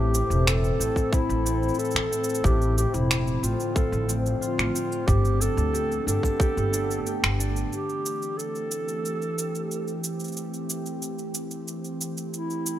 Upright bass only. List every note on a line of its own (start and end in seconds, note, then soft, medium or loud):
0.00 0.21 A1 medium
0.30 0.70 E1 medium
0.79 0.90 A1 medium
1.29 1.69 A1 medium
1.95 2.06 A1 medium
2.44 2.84 A1 loud
2.94 3.34 E1 loud
3.43 3.54 A1 medium
3.92 4.32 A1 medium
4.58 4.69 A1 medium
5.08 5.48 G1 loud
5.57 5.97 D2 medium
6.07 6.18 G1 medium
6.57 6.97 G1 medium
7.23 7.63 G1 medium